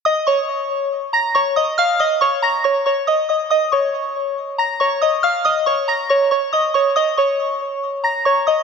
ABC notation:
X:1
M:4/4
L:1/8
Q:1/4=139
K:Bbphr
V:1 name="Synth bell"
[ee'] [dd']3 z [bb'] [dd'] [ee'] | [ff'] [ee'] [dd'] [bb'] [dd'] [dd'] [ee'] [ee'] | [ee'] [dd']3 z [bb'] [dd'] [ee'] | [ff'] [ee'] [dd'] [bb'] [dd'] [dd'] [ee'] [dd'] |
[ee'] [dd']3 z [bb'] [dd'] [ee'] |]